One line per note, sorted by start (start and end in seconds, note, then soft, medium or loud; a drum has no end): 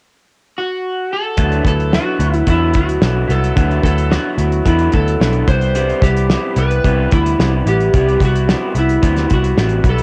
0.58 1.12 F#4 medium
1.13 1.66 A4 medium
1.37 1.60 D2 loud
1.37 1.65 D3 medium
1.37 1.65 F#3 medium
1.37 1.65 B3 medium
1.37 1.64 E4 medium
1.37 kick loud
1.37 closed hi-hat medium
1.52 closed hi-hat soft
1.65 1.98 D2 medium
1.65 1.92 F#3 soft
1.65 1.92 B3 soft
1.65 1.92 E4 soft
1.65 1.92 A4 medium
1.65 kick medium
1.65 closed hi-hat medium
1.80 closed hi-hat medium
1.93 2.20 D3 medium
1.93 2.20 F#3 medium
1.93 2.19 B3 medium
1.93 2.18 E4 medium
1.93 2.44 F#4 medium
1.93 snare medium
2.19 2.41 D2 medium
2.19 2.46 F#3 soft
2.19 2.46 B3 soft
2.19 2.47 E4 soft
2.19 closed hi-hat medium
2.34 closed hi-hat soft
2.47 2.75 E2 medium
2.47 2.74 D3 medium
2.47 2.75 F#3 medium
2.47 2.74 B3 medium
2.47 2.73 E4 medium
2.47 2.76 E4 medium
2.47 kick medium
2.47 closed hi-hat medium
2.73 2.97 D2 medium
2.73 3.01 F#3 soft
2.73 3.01 B3 soft
2.73 3.02 E4 soft
2.73 3.32 F#4 medium
2.73 kick medium
2.73 closed hi-hat medium
2.89 closed hi-hat soft
3.01 3.24 B1 medium
3.01 3.29 D3 soft
3.01 3.29 F#3 medium
3.01 3.28 B3 medium
3.01 3.26 E4 medium
3.01 snare loud
3.28 3.51 C2 medium
3.28 3.55 F#3 soft
3.28 3.56 B3 soft
3.28 3.56 E4 soft
3.28 3.83 A4 medium
3.28 closed hi-hat medium
3.44 closed hi-hat soft
3.56 3.78 D2 loud
3.56 3.83 D3 medium
3.56 3.84 F#3 medium
3.56 3.83 B3 medium
3.56 3.82 E4 medium
3.56 kick loud
3.56 closed hi-hat medium
3.71 closed hi-hat soft
3.83 4.16 D2 medium
3.83 4.10 F#3 soft
3.83 4.10 B3 soft
3.83 4.11 E4 soft
3.83 4.12 A4 medium
3.83 kick medium
3.83 closed hi-hat medium
3.98 closed hi-hat soft
4.10 4.38 D3 medium
4.10 4.38 F#3 medium
4.10 4.38 B3 medium
4.10 4.37 E4 medium
4.10 4.68 F#4 medium
4.10 snare medium
4.38 4.60 D2 medium
4.38 4.65 F#3 soft
4.38 4.65 B3 soft
4.38 4.65 E4 soft
4.38 closed hi-hat medium
4.52 closed hi-hat soft
4.65 4.87 E2 medium
4.65 4.93 D3 medium
4.65 4.93 F#3 medium
4.65 4.92 B3 medium
4.65 4.91 E4 medium
4.65 4.92 E4 medium
4.65 kick medium
4.65 closed hi-hat medium
4.79 closed hi-hat soft
4.92 5.15 D2 medium
4.92 5.20 F#3 soft
4.92 5.20 B3 soft
4.92 5.20 E4 soft
4.92 5.45 A4 loud
4.92 kick medium
4.92 closed hi-hat medium
5.08 closed hi-hat soft
5.20 5.42 B1 medium
5.20 5.47 D3 medium
5.20 5.48 F#3 soft
5.20 5.47 B3 medium
5.20 5.46 E4 medium
5.20 snare medium
5.33 closed hi-hat soft
5.47 5.91 C2 medium
5.47 5.74 G3 soft
5.47 5.75 B3 soft
5.47 5.75 E4 soft
5.47 6.04 C5 loud
5.47 kick loud
5.47 closed hi-hat medium
5.61 closed hi-hat soft
5.75 6.02 C3 medium
5.75 6.02 G3 medium
5.75 6.01 B3 medium
5.75 6.00 E4 medium
5.75 closed hi-hat medium
5.90 closed hi-hat soft
6.01 6.35 C2 medium
6.01 6.29 G3 soft
6.01 6.29 B3 soft
6.01 6.29 E4 soft
6.01 6.59 G4 medium
6.01 kick medium
6.01 closed hi-hat medium
6.17 closed hi-hat soft
6.29 6.57 C3 medium
6.29 6.57 G3 medium
6.29 6.56 B3 medium
6.29 6.55 E4 medium
6.29 snare medium
6.56 6.79 C2 medium
6.56 6.84 G3 soft
6.56 6.84 B3 soft
6.56 6.84 E4 soft
6.56 7.14 B4 loud
6.56 closed hi-hat medium
6.71 closed hi-hat soft
6.84 7.06 C2 medium
6.84 7.12 C3 medium
6.84 7.12 G3 medium
6.84 7.11 B3 medium
6.84 7.11 E4 medium
6.84 kick medium
6.84 closed hi-hat medium
7.11 7.34 D2 medium
7.11 7.38 G3 soft
7.11 7.39 B3 soft
7.11 7.39 E4 soft
7.11 7.63 E4 medium
7.11 kick loud
7.11 closed hi-hat medium
7.26 closed hi-hat medium
7.39 7.61 C2 medium
7.39 7.66 C3 medium
7.39 7.66 G3 medium
7.39 7.66 B3 medium
7.39 7.65 E4 medium
7.39 snare loud
7.66 7.88 A1 medium
7.66 7.93 G3 soft
7.66 7.94 B3 medium
7.66 7.94 E4 medium
7.66 8.18 G4 medium
7.66 closed hi-hat medium
7.80 closed hi-hat soft
7.94 8.16 C2 loud
7.94 8.21 C3 medium
7.94 8.21 G3 medium
7.94 8.21 B3 medium
7.94 8.20 E4 medium
7.94 kick medium
7.94 closed hi-hat medium
8.08 closed hi-hat soft
8.20 8.53 C2 medium
8.20 8.47 G3 soft
8.20 8.48 B3 soft
8.20 8.48 E4 medium
8.20 kick medium
8.20 closed hi-hat medium
8.25 8.74 F#4 medium
8.36 closed hi-hat soft
8.48 8.75 C3 medium
8.48 8.76 G3 medium
8.48 8.74 B3 medium
8.48 8.73 E4 medium
8.48 snare medium
8.74 8.97 C2 medium
8.74 9.01 G3 soft
8.74 9.02 B3 soft
8.74 9.02 E4 soft
8.74 closed hi-hat medium
8.79 9.28 E4 medium
8.89 closed hi-hat soft
9.02 9.25 D2 medium
9.02 9.30 C3 medium
9.02 9.30 G3 medium
9.02 9.29 B3 medium
9.02 9.28 E4 medium
9.02 kick medium
9.02 closed hi-hat medium
9.17 snare soft
9.17 closed hi-hat soft
9.29 9.52 C2 medium
9.29 9.57 G3 soft
9.29 9.57 B3 soft
9.29 9.57 E4 soft
9.29 kick medium
9.29 closed hi-hat medium
9.33 9.88 F#4 medium
9.44 closed hi-hat medium
9.57 9.79 A1 medium
9.57 9.84 C3 medium
9.57 9.85 G3 medium
9.57 9.85 B3 medium
9.57 9.83 E4 medium
9.57 snare medium
9.69 closed hi-hat soft
9.84 10.03 B1 medium
9.84 10.03 G3 soft
9.84 10.03 B3 soft
9.84 10.03 E4 medium
9.84 kick medium
9.84 closed hi-hat medium
9.89 10.03 A4 medium
9.98 closed hi-hat soft